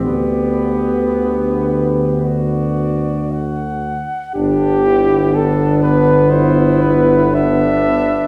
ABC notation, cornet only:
X:1
M:4/4
L:1/8
Q:1/4=57
K:G
V:1 name="Cornet"
d2 B2 d2 f2 | G2 A B c B e2 |]